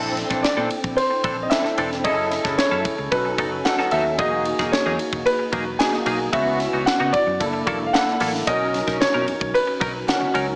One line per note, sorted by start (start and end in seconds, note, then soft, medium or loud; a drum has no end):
0.00 0.23 A#1 loud
0.00 0.15 E3 medium
0.00 0.15 C4 medium
0.00 0.68 C4 medium
0.00 0.15 D4 medium
0.00 0.68 D4 medium
0.00 0.69 E4 medium
0.00 0.15 A4 loud
0.00 0.69 A4 medium
0.00 0.46 E5 medium
0.17 snare soft
0.17 ride medium
0.30 0.41 A#1 medium
0.30 0.42 E3 soft
0.30 0.43 C4 medium
0.30 0.43 D4 medium
0.30 0.43 A4 medium
0.30 kick loud
0.30 snare soft
0.43 0.93 D5 medium
0.43 muted clean electric guitar stroke soft
0.43 muted fingered electric bass stroke soft
0.43 snare loud
0.43 ride medium
0.57 0.68 A#2 medium
0.57 0.69 E3 medium
0.57 0.69 C4 medium
0.57 0.70 D4 medium
0.57 0.70 A4 medium
0.70 ride medium
0.84 0.95 A#1 medium
0.84 muted clean electric guitar stroke soft
0.84 kick medium
0.97 1.45 C5 medium
0.97 muted clean electric guitar stroke soft
0.97 ride medium
1.10 muted clean electric guitar stroke soft
1.24 1.46 A#1 medium
1.24 1.42 E3 medium
1.24 1.37 C4 medium
1.24 1.37 D4 medium
1.24 1.36 A4 medium
1.24 kick medium
1.24 ride medium
1.38 muted clean electric guitar stroke soft
1.43 1.50 D#5 medium
1.50 1.90 C4 medium
1.50 1.90 D4 medium
1.50 1.91 E4 medium
1.50 1.91 A4 medium
1.50 2.06 E5 medium
1.50 muted clean electric guitar stroke soft
1.50 snare loud
1.50 ride medium
1.64 muted clean electric guitar stroke soft
1.64 snare soft
1.78 2.05 E1 medium
1.78 1.95 E3 medium
1.78 1.91 C4 loud
1.78 1.90 D4 medium
1.78 1.90 A4 medium
1.78 ride medium
1.91 muted clean electric guitar stroke soft
1.91 snare soft
2.04 2.37 F#1 loud
2.04 2.29 F#3 medium
2.04 2.29 C#4 medium
2.04 2.83 C#4 medium
2.04 2.30 E4 loud
2.04 2.83 E4 medium
2.04 2.83 G#4 medium
2.04 2.30 A4 medium
2.04 2.84 A4 medium
2.04 2.60 D#5 loud
2.04 kick loud
2.04 ride medium
2.31 snare soft
2.31 ride medium
2.44 2.56 F#1 medium
2.44 2.57 F#3 soft
2.44 2.57 C#4 medium
2.44 2.58 E4 medium
2.44 2.58 A4 medium
2.44 kick loud
2.44 snare soft
2.58 3.13 C#5 medium
2.58 muted fingered electric bass stroke medium
2.58 snare loud
2.58 ride medium
2.71 2.83 F#2 medium
2.71 2.84 F#3 medium
2.71 2.84 C#4 medium
2.71 2.84 E4 medium
2.71 2.85 A4 medium
2.85 muted clean electric guitar stroke soft
2.85 kick medium
2.85 ride medium
2.98 3.10 C#2 medium
2.98 muted clean electric guitar stroke soft
3.12 3.34 B1 loud
3.12 3.55 C#4 medium
3.12 3.55 D#4 medium
3.12 3.55 F#4 medium
3.12 3.55 A4 medium
3.12 3.67 B4 loud
3.12 muted clean electric guitar stroke soft
3.12 kick medium
3.12 ride medium
3.25 muted clean electric guitar stroke medium
3.38 3.60 F#1 loud
3.38 3.56 F#3 medium
3.38 3.51 B3 medium
3.38 3.51 D#4 medium
3.38 3.51 A4 loud
3.38 kick medium
3.38 ride medium
3.52 muted clean electric guitar stroke soft
3.65 4.04 C#4 medium
3.65 4.05 D#4 medium
3.65 4.05 F#4 medium
3.65 4.05 A4 medium
3.65 3.93 F#5 medium
3.65 muted clean electric guitar stroke soft
3.65 snare loud
3.65 ride medium
3.79 3.91 F#3 medium
3.79 3.91 B3 medium
3.79 3.92 D#4 medium
3.79 3.92 A4 medium
3.79 snare soft
3.91 4.20 D#2 medium
3.91 4.06 F#3 medium
3.91 4.05 B3 medium
3.91 4.05 D#4 medium
3.91 4.05 A4 medium
3.91 4.20 E5 medium
3.91 ride medium
4.06 muted clean electric guitar stroke soft
4.18 4.44 F#3 medium
4.18 4.97 A#3 medium
4.18 4.44 A#3 loud
4.18 4.97 D#4 medium
4.18 4.44 D#4 loud
4.18 4.98 F#4 medium
4.18 4.44 G#4 loud
4.18 4.98 G#4 medium
4.18 4.74 D#5 loud
4.18 kick loud
4.18 ride medium
4.45 ride medium
4.59 4.70 E1 medium
4.59 4.71 F#3 medium
4.59 4.72 A#3 medium
4.59 4.72 D#4 medium
4.59 4.72 G#4 medium
4.59 kick medium
4.59 snare soft
4.72 5.28 C#5 medium
4.72 muted fingered electric bass stroke medium
4.72 muted clean electric guitar stroke soft
4.72 snare loud
4.72 ride medium
4.86 4.97 E2 loud
4.86 4.98 F#3 medium
4.86 4.98 A#3 medium
4.86 4.99 D#4 medium
4.86 4.99 G#4 medium
4.99 muted clean electric guitar stroke medium
4.99 ride medium
5.13 5.24 E1 medium
5.13 muted clean electric guitar stroke soft
5.13 kick medium
5.26 5.81 B4 loud
5.26 muted clean electric guitar stroke soft
5.26 ride medium
5.39 muted clean electric guitar stroke soft
5.52 5.75 E1 medium
5.52 5.70 F#3 medium
5.52 5.65 A#3 medium
5.52 5.65 D#4 loud
5.52 5.64 G#4 medium
5.52 kick medium
5.52 ride medium
5.66 muted clean electric guitar stroke soft
5.79 6.19 A#3 medium
5.79 6.19 D#4 medium
5.79 6.19 F#4 medium
5.79 6.19 G#4 medium
5.79 6.35 G#5 loud
5.79 muted clean electric guitar stroke soft
5.79 snare loud
5.79 ride medium
5.93 muted clean electric guitar stroke medium
5.93 snare soft
6.06 6.28 B1 loud
6.06 6.24 F#3 medium
6.06 6.19 A#3 medium
6.06 6.19 D#4 medium
6.06 6.18 G#4 medium
6.06 ride medium
6.20 muted clean electric guitar stroke soft
6.33 6.66 C#2 loud
6.33 6.58 E3 medium
6.33 7.11 B3 medium
6.33 6.58 B3 loud
6.33 7.11 C#4 medium
6.33 6.58 D#4 loud
6.33 7.12 E4 medium
6.33 6.58 F#4 loud
6.33 7.12 F#4 medium
6.33 6.88 E5 loud
6.33 kick loud
6.33 ride medium
6.60 muted clean electric guitar stroke soft
6.60 snare soft
6.60 ride medium
6.73 6.84 C#2 loud
6.73 6.86 E3 medium
6.73 6.86 B3 soft
6.73 6.86 D#4 medium
6.73 6.86 F#4 medium
6.86 7.11 F#5 loud
6.86 muted fingered electric bass stroke soft
6.86 snare loud
6.86 ride medium
7.00 7.11 C#3 loud
7.00 7.12 E3 medium
7.00 7.13 B3 medium
7.00 7.13 D#4 medium
7.00 7.13 F#4 medium
7.13 7.89 D5 loud
7.13 kick medium
7.13 ride medium
7.27 7.38 F#2 medium
7.27 muted clean electric guitar stroke soft
7.40 7.62 F#1 medium
7.40 7.83 A#3 medium
7.40 7.83 D4 medium
7.40 7.83 E4 medium
7.40 7.84 A4 medium
7.40 muted clean electric guitar stroke soft
7.40 kick medium
7.40 ride medium
7.53 muted clean electric guitar stroke medium
7.67 7.89 E1 loud
7.67 7.84 F#3 medium
7.67 7.80 A#3 loud
7.67 7.79 E4 medium
7.67 7.79 A4 loud
7.67 kick loud
7.67 ride medium
7.80 muted clean electric guitar stroke soft
7.86 7.94 F5 medium
7.93 8.33 A#3 medium
7.93 8.33 D4 medium
7.93 8.33 E4 medium
7.93 8.33 A4 medium
7.93 8.49 F#5 medium
7.93 muted clean electric guitar stroke soft
7.93 snare loud
7.93 ride medium
8.07 muted clean electric guitar stroke soft
8.07 snare soft
8.20 8.42 A1 medium
8.20 8.38 F#3 medium
8.20 8.34 A#3 loud
8.20 8.33 E4 medium
8.20 8.33 A4 medium
8.20 open hi-hat medium
8.20 ride medium
8.34 muted clean electric guitar stroke medium
8.34 snare soft
8.47 8.80 B1 loud
8.47 8.72 F#3 medium
8.47 8.72 C#4 medium
8.47 9.26 C#4 medium
8.47 8.72 D#4 medium
8.47 9.26 D#4 medium
8.47 9.26 F#4 medium
8.47 8.73 A#4 medium
8.47 9.26 A#4 loud
8.47 9.02 D#5 loud
8.47 kick loud
8.47 hi-hat pedal medium
8.47 ride medium
8.47 muted conga medium
8.74 muted clean electric guitar stroke soft
8.74 snare soft
8.74 ride medium
8.74 muted conga soft
8.87 8.99 B1 medium
8.87 8.99 F#3 medium
8.87 9.00 C#4 soft
8.87 9.00 D#4 medium
8.87 9.00 A#4 medium
8.87 kick loud
8.87 snare soft
9.01 9.56 C#5 loud
9.01 muted clean electric guitar stroke soft
9.01 muted fingered electric bass stroke soft
9.01 snare loud
9.01 ride medium
9.01 high conga medium
9.14 9.25 B2 loud
9.14 9.26 F#3 medium
9.14 9.27 C#4 medium
9.14 9.27 D#4 medium
9.14 9.27 A#4 medium
9.28 ride medium
9.28 low conga medium
9.41 9.52 B1 medium
9.41 muted clean electric guitar stroke soft
9.41 kick medium
9.54 10.04 B4 loud
9.54 muted clean electric guitar stroke soft
9.54 ride medium
9.54 muted conga soft
9.67 muted clean electric guitar stroke medium
9.80 10.03 B1 medium
9.80 9.98 F#3 medium
9.80 9.94 C#4 medium
9.80 9.93 D#4 loud
9.80 9.93 A#4 loud
9.80 kick medium
9.80 ride medium
9.80 muted conga medium
9.94 muted clean electric guitar stroke soft
10.07 10.47 C#4 medium
10.07 10.47 D#4 medium
10.07 10.47 F#4 medium
10.07 10.47 A#4 medium
10.07 10.56 F#5 medium
10.07 muted clean electric guitar stroke soft
10.07 snare loud
10.07 ride medium
10.07 high conga medium
10.21 muted clean electric guitar stroke medium
10.21 high conga medium
10.34 10.56 C#2 medium
10.34 10.52 F#3 medium
10.34 10.47 C#4 medium
10.34 10.47 D#4 medium
10.34 10.46 A#4 medium
10.34 ride medium
10.47 muted clean electric guitar stroke soft